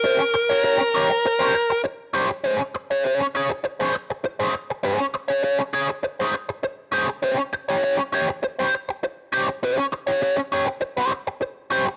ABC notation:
X:1
M:4/4
L:1/16
Q:1/4=100
K:Ab
V:1 name="Lead electric guitar"
B12 z4 | z16 | z16 | z16 |
z16 |]
V:2 name="Overdriven electric guitar"
[DGc] z2 [DGd] [DGd] z [DGd] z2 [DGc] z4 [DGc] z | [DAc] z2 [DAd] [DAd] z [DAd] z2 [DAc] z3 [DAc] z2 | [DAc] z2 [DAd] [DAd] z [DAd] z2 [DAc] z4 [DAc] z | [DGc] z2 [DGd] [DGd] z [DGd] z2 [DGc] z4 [DGc] z |
[DGc] z2 [DGd] [DGd] z [DGd] z2 [DGc] z4 [DGc] z |]